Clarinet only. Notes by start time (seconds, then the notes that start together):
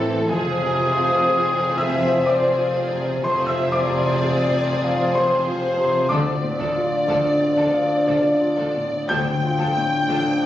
Already playing: A4
0.30 G#4
1.78 E5
2.26 D5
3.24 C5
3.48 E5
3.73 D5
5.17 C5
6.11 D5
9.09 G5